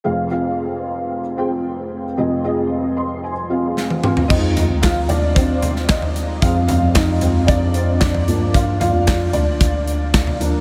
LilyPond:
<<
  \new Staff \with { instrumentName = "Felt piano" } { \time 4/4 \key f \dorian \tempo 4 = 113 << { r1 | r4. c'''8 aes''4 f''4 | <ees' ees''>4 <f' f''>8 <d' d''>8 <c' c''>4 <ees' ees''>4 | <f' f''>8 <f' f''>8 <ees' ees''>4 <d' d''>8 <c' c''>8 <d' d''>4 |
<f' f''>8 <f' f''>4 <d' d''>4 r4. | } \\ { <c' f' aes' f''>8 <c' f' aes' f''>4. r8 <c' f' aes' g''>4~ <c' f' aes' g''>16 r16 | <c' f' aes' ees''>8 <c' f' aes' ees''>4. r8 <c' f' aes' f''>4 <c' f' aes' f''>8 | r1 | r1 |
r1 | } >> }
  \new Staff \with { instrumentName = "Felt piano" } { \clef bass \time 4/4 \key f \dorian <f,, f,>1 | <f,, f,>2.~ <f,, f,>8 r8 | <f aes c'>1 | <f aes c'>4. <f aes c'>8 r4. <f bes d'>8~ |
<f bes d'>4 r2 r8 <f bes d'>8 | }
  \new Staff \with { instrumentName = "Tine electric piano" } { \clef bass \time 4/4 \key f \dorian r1 | r1 | f,8. d,8. ees,2~ ees,8 | f,8. f,16 f,4 f,4 f,8 g,8~ |
g,8. f,8. d,2~ d,8 | }
  \new DrumStaff \with { instrumentName = "Drums" } \drummode { \time 4/4 r4 r4 r4 r4 | r4 r4 r4 sn16 tommh16 toml16 tomfh16 | <cymc bd>8 <hh tomfh>8 <hc hh bd sn>8 <hh tomfh>8 <hh bd>8 <hh tomfh>16 sn16 <hc hh bd sn>16 tomfh16 hh8 | <hh bd>8 <hh tomfh>8 <hc hh bd sn>8 <hh tomfh>8 <hh bd>8 hh8 <hc hh bd sn>16 tomfh16 hh8 |
<hh bd>8 <hh tomfh>8 <hc hh bd sn>8 <hh tomfh>8 <hh bd>8 hh8 <hc hh bd sn>16 tomfh16 hh8 | }
>>